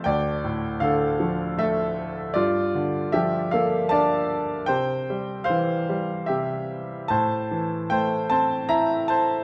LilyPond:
<<
  \new Staff \with { instrumentName = "Grand piano" } { \time 3/4 \key c \mixolydian \tempo 4 = 76 <d'' g''>4 <a' f''>4 <a' e''>8. r16 | <f' d''>4 <g' e''>8 <a' f''>8 <d'' a''>4 | <c'' g''>4 <c'' f''>4 <g' e''>8. r16 | <c'' a''>4 <c'' g''>8 <c'' a''>8 <e'' bes''>8 <c'' a''>8 | }
  \new Staff \with { instrumentName = "Grand piano" } { \clef bass \time 3/4 \key c \mixolydian d,8 a,8 d8 f8 a4 | g,8 d8 f8 bes8 d'4 | c8 g8 e8 g8 c4 | a,8 e8 a8 c'8 e'4 | }
>>